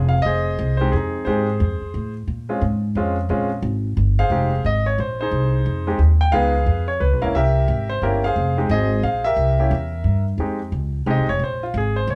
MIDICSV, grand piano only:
0, 0, Header, 1, 2, 480
1, 0, Start_track
1, 0, Key_signature, -4, "minor"
1, 0, Tempo, 337838
1, 364, Time_signature, 3, 2, 24, 8
1, 17264, End_track
2, 0, Start_track
2, 0, Title_t, "Grand piano"
2, 0, Program_c, 0, 0
2, 0, Note_on_c, 0, 68, 79
2, 122, Note_on_c, 0, 77, 82
2, 197, Note_off_c, 0, 68, 0
2, 314, Note_on_c, 0, 75, 87
2, 318, Note_off_c, 0, 77, 0
2, 372, Note_on_c, 0, 68, 62
2, 372, Note_on_c, 0, 72, 65
2, 1061, Note_off_c, 0, 75, 0
2, 1076, Note_off_c, 0, 72, 0
2, 1092, Note_off_c, 0, 68, 0
2, 1097, Note_on_c, 0, 72, 76
2, 1144, Note_on_c, 0, 56, 59
2, 1152, Note_on_c, 0, 60, 56
2, 1154, Note_on_c, 0, 63, 52
2, 1157, Note_on_c, 0, 67, 68
2, 1305, Note_off_c, 0, 56, 0
2, 1305, Note_on_c, 0, 68, 70
2, 1306, Note_off_c, 0, 72, 0
2, 1309, Note_off_c, 0, 60, 0
2, 1310, Note_off_c, 0, 63, 0
2, 1311, Note_off_c, 0, 67, 0
2, 1361, Note_on_c, 0, 60, 53
2, 1365, Note_on_c, 0, 63, 51
2, 1775, Note_on_c, 0, 72, 73
2, 1783, Note_off_c, 0, 60, 0
2, 1787, Note_off_c, 0, 63, 0
2, 1799, Note_on_c, 0, 56, 58
2, 1805, Note_on_c, 0, 60, 51
2, 1807, Note_off_c, 0, 68, 0
2, 1808, Note_on_c, 0, 63, 54
2, 1810, Note_on_c, 0, 67, 64
2, 1833, Note_on_c, 0, 68, 56
2, 2070, Note_off_c, 0, 56, 0
2, 2073, Note_off_c, 0, 60, 0
2, 2075, Note_off_c, 0, 63, 0
2, 2075, Note_off_c, 0, 67, 0
2, 2990, Note_off_c, 0, 72, 0
2, 3019, Note_off_c, 0, 68, 0
2, 3539, Note_on_c, 0, 56, 57
2, 3547, Note_on_c, 0, 60, 51
2, 3547, Note_on_c, 0, 61, 51
2, 3550, Note_on_c, 0, 65, 67
2, 3701, Note_off_c, 0, 56, 0
2, 3705, Note_off_c, 0, 60, 0
2, 3705, Note_off_c, 0, 61, 0
2, 3707, Note_off_c, 0, 65, 0
2, 4212, Note_on_c, 0, 56, 64
2, 4215, Note_on_c, 0, 60, 59
2, 4220, Note_on_c, 0, 61, 54
2, 4222, Note_on_c, 0, 65, 71
2, 4475, Note_off_c, 0, 56, 0
2, 4477, Note_off_c, 0, 60, 0
2, 4479, Note_off_c, 0, 61, 0
2, 4480, Note_off_c, 0, 65, 0
2, 4685, Note_on_c, 0, 56, 68
2, 4689, Note_on_c, 0, 60, 61
2, 4689, Note_on_c, 0, 61, 64
2, 4693, Note_on_c, 0, 65, 73
2, 4951, Note_off_c, 0, 56, 0
2, 4953, Note_off_c, 0, 60, 0
2, 4954, Note_off_c, 0, 61, 0
2, 4956, Note_off_c, 0, 65, 0
2, 5953, Note_on_c, 0, 77, 90
2, 5961, Note_on_c, 0, 68, 61
2, 5966, Note_on_c, 0, 72, 62
2, 6123, Note_on_c, 0, 56, 55
2, 6125, Note_on_c, 0, 63, 51
2, 6131, Note_on_c, 0, 60, 49
2, 6132, Note_on_c, 0, 67, 62
2, 6390, Note_off_c, 0, 56, 0
2, 6391, Note_off_c, 0, 63, 0
2, 6394, Note_off_c, 0, 60, 0
2, 6395, Note_off_c, 0, 67, 0
2, 6560, Note_off_c, 0, 77, 0
2, 6564, Note_off_c, 0, 68, 0
2, 6566, Note_off_c, 0, 72, 0
2, 6620, Note_on_c, 0, 75, 85
2, 6888, Note_off_c, 0, 75, 0
2, 6909, Note_on_c, 0, 73, 76
2, 7071, Note_off_c, 0, 73, 0
2, 7102, Note_on_c, 0, 72, 72
2, 7376, Note_off_c, 0, 72, 0
2, 7397, Note_on_c, 0, 72, 81
2, 7416, Note_on_c, 0, 68, 56
2, 7421, Note_on_c, 0, 63, 59
2, 8328, Note_off_c, 0, 63, 0
2, 8341, Note_on_c, 0, 56, 63
2, 8343, Note_on_c, 0, 60, 53
2, 8349, Note_on_c, 0, 63, 54
2, 8355, Note_on_c, 0, 67, 68
2, 8471, Note_off_c, 0, 72, 0
2, 8481, Note_off_c, 0, 68, 0
2, 8501, Note_off_c, 0, 56, 0
2, 8503, Note_off_c, 0, 60, 0
2, 8506, Note_off_c, 0, 63, 0
2, 8509, Note_off_c, 0, 67, 0
2, 8821, Note_on_c, 0, 79, 86
2, 8980, Note_on_c, 0, 77, 96
2, 8989, Note_on_c, 0, 56, 60
2, 8993, Note_on_c, 0, 59, 51
2, 8999, Note_on_c, 0, 63, 53
2, 8999, Note_on_c, 0, 65, 65
2, 9005, Note_off_c, 0, 79, 0
2, 9010, Note_on_c, 0, 71, 67
2, 9012, Note_on_c, 0, 68, 64
2, 9264, Note_off_c, 0, 56, 0
2, 9266, Note_off_c, 0, 59, 0
2, 9269, Note_off_c, 0, 63, 0
2, 9269, Note_off_c, 0, 65, 0
2, 9731, Note_off_c, 0, 71, 0
2, 9732, Note_off_c, 0, 68, 0
2, 9774, Note_on_c, 0, 73, 83
2, 9794, Note_off_c, 0, 77, 0
2, 9950, Note_on_c, 0, 71, 77
2, 9962, Note_off_c, 0, 73, 0
2, 10234, Note_off_c, 0, 71, 0
2, 10255, Note_on_c, 0, 77, 80
2, 10256, Note_on_c, 0, 58, 63
2, 10256, Note_on_c, 0, 64, 59
2, 10259, Note_on_c, 0, 61, 62
2, 10263, Note_on_c, 0, 70, 72
2, 10420, Note_off_c, 0, 58, 0
2, 10420, Note_off_c, 0, 64, 0
2, 10422, Note_off_c, 0, 61, 0
2, 10423, Note_off_c, 0, 70, 0
2, 10425, Note_off_c, 0, 77, 0
2, 10443, Note_on_c, 0, 76, 87
2, 10460, Note_on_c, 0, 67, 64
2, 10465, Note_on_c, 0, 70, 65
2, 11177, Note_off_c, 0, 67, 0
2, 11180, Note_off_c, 0, 70, 0
2, 11217, Note_on_c, 0, 72, 83
2, 11246, Note_off_c, 0, 76, 0
2, 11386, Note_off_c, 0, 72, 0
2, 11403, Note_on_c, 0, 58, 62
2, 11406, Note_on_c, 0, 61, 57
2, 11411, Note_on_c, 0, 64, 57
2, 11411, Note_on_c, 0, 67, 68
2, 11415, Note_on_c, 0, 70, 74
2, 11672, Note_off_c, 0, 58, 0
2, 11674, Note_off_c, 0, 61, 0
2, 11676, Note_off_c, 0, 64, 0
2, 11676, Note_off_c, 0, 67, 0
2, 11688, Note_off_c, 0, 70, 0
2, 11711, Note_on_c, 0, 77, 90
2, 11731, Note_on_c, 0, 72, 61
2, 11736, Note_on_c, 0, 68, 63
2, 12153, Note_off_c, 0, 77, 0
2, 12185, Note_on_c, 0, 56, 61
2, 12189, Note_on_c, 0, 63, 55
2, 12190, Note_on_c, 0, 60, 55
2, 12190, Note_on_c, 0, 67, 64
2, 12332, Note_off_c, 0, 72, 0
2, 12334, Note_off_c, 0, 68, 0
2, 12346, Note_off_c, 0, 56, 0
2, 12348, Note_off_c, 0, 60, 0
2, 12348, Note_off_c, 0, 63, 0
2, 12348, Note_off_c, 0, 67, 0
2, 12376, Note_on_c, 0, 75, 85
2, 12403, Note_on_c, 0, 68, 65
2, 12405, Note_on_c, 0, 72, 61
2, 12816, Note_off_c, 0, 75, 0
2, 12836, Note_on_c, 0, 77, 81
2, 13110, Note_off_c, 0, 68, 0
2, 13111, Note_off_c, 0, 72, 0
2, 13134, Note_on_c, 0, 76, 90
2, 13149, Note_off_c, 0, 77, 0
2, 13161, Note_on_c, 0, 70, 55
2, 13163, Note_on_c, 0, 67, 57
2, 13617, Note_off_c, 0, 67, 0
2, 13629, Note_on_c, 0, 58, 55
2, 13629, Note_on_c, 0, 61, 53
2, 13632, Note_on_c, 0, 64, 54
2, 13638, Note_on_c, 0, 67, 64
2, 13788, Note_off_c, 0, 58, 0
2, 13788, Note_off_c, 0, 61, 0
2, 13790, Note_off_c, 0, 64, 0
2, 13793, Note_off_c, 0, 67, 0
2, 14523, Note_off_c, 0, 76, 0
2, 14536, Note_off_c, 0, 70, 0
2, 14769, Note_on_c, 0, 56, 53
2, 14772, Note_on_c, 0, 60, 48
2, 14774, Note_on_c, 0, 63, 48
2, 14775, Note_on_c, 0, 67, 60
2, 15037, Note_off_c, 0, 56, 0
2, 15038, Note_off_c, 0, 60, 0
2, 15039, Note_off_c, 0, 63, 0
2, 15040, Note_off_c, 0, 67, 0
2, 15720, Note_on_c, 0, 56, 64
2, 15726, Note_on_c, 0, 60, 57
2, 15729, Note_on_c, 0, 63, 60
2, 15730, Note_on_c, 0, 67, 76
2, 15776, Note_on_c, 0, 75, 76
2, 15993, Note_off_c, 0, 56, 0
2, 15995, Note_off_c, 0, 60, 0
2, 15997, Note_off_c, 0, 63, 0
2, 15998, Note_off_c, 0, 67, 0
2, 16042, Note_off_c, 0, 75, 0
2, 16043, Note_on_c, 0, 73, 80
2, 16209, Note_off_c, 0, 73, 0
2, 16248, Note_on_c, 0, 72, 73
2, 16518, Note_off_c, 0, 72, 0
2, 16526, Note_on_c, 0, 65, 65
2, 16691, Note_off_c, 0, 65, 0
2, 16730, Note_on_c, 0, 68, 73
2, 16997, Note_on_c, 0, 72, 80
2, 17000, Note_off_c, 0, 68, 0
2, 17166, Note_off_c, 0, 72, 0
2, 17195, Note_on_c, 0, 73, 73
2, 17264, Note_off_c, 0, 73, 0
2, 17264, End_track
0, 0, End_of_file